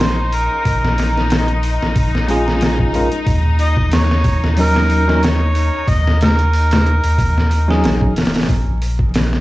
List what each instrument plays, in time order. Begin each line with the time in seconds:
Already playing: sub bass A#1, string section D#4, harmonica C5
0.01 snare
0.32 harmonica A#4, open hi-hat
0.65 sub bass A#1, kick, open hi-hat
0.85 snare
0.98 snare, open hi-hat
1.17 snare
1.30 snare, open hi-hat
1.48 closed hi-hat
1.63 open hi-hat
1.82 sub bass A#1, snare
1.96 kick, open hi-hat
2.15 snare
2.28 tine electric piano G#3 C#4 F4 G#4, open hi-hat
2.48 snare
2.61 snare, open hi-hat
2.79 kick
2.93 tine electric piano G#3 C#4 F4 A#4, open hi-hat
3.12 closed hi-hat
3.27 sub bass D#2, kick, open hi-hat
3.59 harmonica D#5, open hi-hat
3.77 kick
3.92 harmonica C#5, snare, open hi-hat
4.11 snare
4.24 kick, open hi-hat
4.44 sub bass D#2, snare
4.57 tine electric piano F#3 C#4 D#4 A#4, harmonica A#4, open hi-hat
4.76 snare
4.90 open hi-hat
5.08 tine electric piano F#3 C#4 D#4 A#4, snare
5.23 harmonica C#5, snare, open hi-hat
5.55 open hi-hat
5.88 sub bass D#2, harmonica D#5, kick, open hi-hat
6.07 snare
6.21 harmonica A#4, snare, open hi-hat
6.39 closed hi-hat
6.53 open hi-hat
6.71 snare, open hi-hat
6.86 closed hi-hat
7.04 sub bass D#2, open hi-hat
7.18 kick, open hi-hat
7.38 snare
7.51 open hi-hat
7.68 tine electric piano F#3 C#4 D#4 G#4, snare
7.84 sub bass A#1, snare, open hi-hat
8.01 kick
8.16 sub bass D#1, snare, open hi-hat
8.25 snare, open hi-hat
8.34 snare, open hi-hat
8.41 snare, open hi-hat
8.49 sub bass A#1, kick, open hi-hat
8.82 open hi-hat
8.99 kick
9.14 snare, open hi-hat
9.33 snare